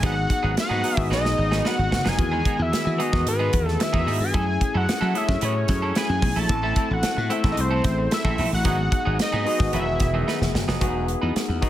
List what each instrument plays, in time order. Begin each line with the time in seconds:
0.02 slap bass G#1, clean electric guitar F#3 B3 D#4 G#4, tine electric piano B3 D#4 F#4 G#4, analog synth lead F#5, kick, closed hi-hat
0.16 muted clean electric guitar stroke
0.29 muted clean electric guitar stroke, kick, closed hi-hat
0.43 slap bass G#1, clean electric guitar F#3 B3 D#4 G#4
0.56 analog synth lead F#5, muted clean electric guitar stroke, muted slap bass stroke, snare, closed hi-hat
0.69 slap bass G#2, clean electric guitar F#3 B3 D#4 G#4
0.83 clean electric guitar F#3 B3 D#4 G#4, tine electric piano B3 D#4 F#4 G#4, open hi-hat
0.97 slap bass G#1, tine electric piano B3 D#4 F#4 G#4, muted clean electric guitar stroke, kick
1.10 slap bass B1, clean electric guitar F#3 B3 D#4 B4, analog synth lead D#5, snare
1.24 muted clean electric guitar stroke, snare
1.38 slap bass G#1, muted clean electric guitar stroke
1.51 clean electric guitar F#3 B3 D#4 G#4, snare
1.64 clean electric guitar F#3 B3 D#4 B4, analog synth lead F#5, snare
1.78 slap bass G#1, muted clean electric guitar stroke
1.91 slap bass F#1, muted clean electric guitar stroke, snare
2.05 slap bass F1, clean electric guitar F#3 B3 D#4 G#4, analog synth lead G#5, snare
2.18 slap bass E2, tine electric piano D#3 B3 F#4 G#4, muted clean electric guitar stroke, kick, closed hi-hat
2.31 clean electric guitar G#3 B3 D#4 G#4
2.45 clean electric guitar G#3 B3 D#4 G#4, kick, closed hi-hat
2.59 slap bass E2, analog synth lead E5, muted clean electric guitar stroke
2.72 muted clean electric guitar stroke, muted slap bass stroke, snare, closed hi-hat
2.85 slap bass E3, muted clean electric guitar stroke
2.98 clean electric guitar G#3 B3 D#4 G#4, tine electric piano B3 D#4 F#4 G#4, analog synth lead D#5, closed hi-hat
3.12 slap bass E2, tine electric piano D#3 B3 F#4 B4, clean electric guitar G#3 B3 D#4 G#4, kick, snare
3.26 slap bass G#2, analog synth lead B4, muted clean electric guitar stroke, closed hi-hat
3.39 clean electric guitar G#3 B3 D#4 G#4
3.53 slap bass E2, muted clean electric guitar stroke, kick, closed hi-hat
3.66 analog synth lead A4, muted clean electric guitar stroke, snare
3.80 analog synth lead E5, muted clean electric guitar stroke, snare, closed hi-hat
3.93 slap bass E2, clean electric guitar G#3 B3 D#4 G#4, kick
4.06 slap bass G#2, clean electric guitar G#3 B3 D#4 G#4, open hi-hat
4.20 slap bass G2, analog synth lead G#5, muted clean electric guitar stroke
4.33 slap bass F#2, clean electric guitar F#3 C#4 E4 A4, tine electric piano A3 C#4 E4 G#4, kick, closed hi-hat
4.47 muted clean electric guitar stroke
4.61 muted clean electric guitar stroke, kick, closed hi-hat
4.74 slap bass F#2, clean electric guitar F#3 C#4 E4 A4, analog synth lead F#5
4.87 muted clean electric guitar stroke, muted slap bass stroke, snare, closed hi-hat
5.01 clean electric guitar F#3 C#4 E4 A4, slap bass F#3
5.14 clean electric guitar F#3 C#4 E4 A4, tine electric piano A3 C#4 E4 G#4, analog synth lead E5, closed hi-hat
5.28 slap bass F#2, tine electric piano A3 C#4 E4 G#4, kick, snare
5.41 slap bass A2, clean electric guitar F#3 C#4 E4 B4, analog synth lead C#5, closed hi-hat
5.55 muted clean electric guitar stroke
5.68 slap bass F#2, muted clean electric guitar stroke, kick, snare, closed hi-hat
5.82 clean electric guitar F#3 C#4 E4 A4
5.95 clean electric guitar F#3 C#4 E4 B4, analog synth lead G#5, snare, closed hi-hat
6.09 slap bass F#2, muted clean electric guitar stroke
6.22 slap bass B1, muted clean electric guitar stroke, kick, open hi-hat
6.36 slap bass A#1, clean electric guitar F#3 C#4 E4 A4, analog synth lead A5
6.49 slap bass A1, tine electric piano A3 C4 E4 A4, muted clean electric guitar stroke, kick, closed hi-hat
6.63 clean electric guitar A3 C4 E4 A4
6.76 clean electric guitar A3 C4 E4 A4, kick, closed hi-hat
6.90 slap bass A1, analog synth lead F#5, muted clean electric guitar stroke
7.03 muted clean electric guitar stroke, muted slap bass stroke, snare, closed hi-hat
7.17 slap bass A2, muted clean electric guitar stroke
7.29 tine electric piano A3 C4 E4 A4, clean electric guitar A3 C4 E4 A4, analog synth lead E5, closed hi-hat
7.43 slap bass A1, tine electric piano A3 C4 E4 G#4, clean electric guitar A3 C4 E4 A4, kick, snare
7.51 tine electric piano A4, analog synth lead D#5
7.57 slap bass C2, analog synth lead C5, muted clean electric guitar stroke, closed hi-hat
7.70 clean electric guitar A3 C4 E4 A4
7.84 slap bass A1, muted clean electric guitar stroke, kick, snare, closed hi-hat
7.98 muted clean electric guitar stroke
8.11 analog synth lead E5, muted clean electric guitar stroke, snare, closed hi-hat
8.25 slap bass A1, clean electric guitar A3 C4 E4 A4, kick
8.38 slap bass A#1, clean electric guitar A3 C4 E4 A4, open hi-hat
8.52 slap bass A1, analog synth lead F#5, muted clean electric guitar stroke
8.64 slap bass G#1, clean electric guitar F#3 B3 D#4 G#4, tine electric piano B3 D#4 F#4 G#4, analog synth lead F#5, kick, closed hi-hat
8.78 muted clean electric guitar stroke
8.92 muted clean electric guitar stroke, kick, closed hi-hat
9.05 slap bass G#1, clean electric guitar F#3 B3 D#4 G#4
9.19 analog synth lead D#5, muted clean electric guitar stroke, snare, closed hi-hat
9.32 slap bass G#2, clean electric guitar F#3 B3 D#4 G#4, analog synth lead D#5
9.45 clean electric guitar F#3 B3 D#4 G#4, tine electric piano B3 D#4 F#4 G#4, open hi-hat
9.58 slap bass G#1, tine electric piano B3 D#4 F#4 G#4, kick, snare
9.72 slap bass E1, tine electric piano D#3 B3 F#4 G#4, clean electric guitar F#3 B3 D#4 B4, analog synth lead E5, closed hi-hat
9.87 muted clean electric guitar stroke
10.00 slap bass E1, muted clean electric guitar stroke, kick, snare, closed hi-hat
10.14 clean electric guitar F#3 B3 D#4 G#4
10.27 clean electric guitar F#3 B3 D#4 B4, snare
10.41 slap bass E1, muted clean electric guitar stroke, snare
10.54 slap bass F#1, muted clean electric guitar stroke, snare
10.68 slap bass F1, clean electric guitar F#3 B3 D#4 G#4, snare
10.80 slap bass E1, clean electric guitar F#3 B3 D#4 G#4, tine electric piano B3 D#4 F#4 G#4, kick, closed hi-hat
11.08 closed hi-hat
11.21 slap bass E2, clean electric guitar F#3 B3 D#4 B4
11.35 muted clean electric guitar stroke, muted slap bass stroke, snare, closed hi-hat
11.49 slap bass E2, muted clean electric guitar stroke
11.61 clean electric guitar F#3 B3 D#4 G#4, tine electric piano B3 D#4 F#4 G#4, kick, closed hi-hat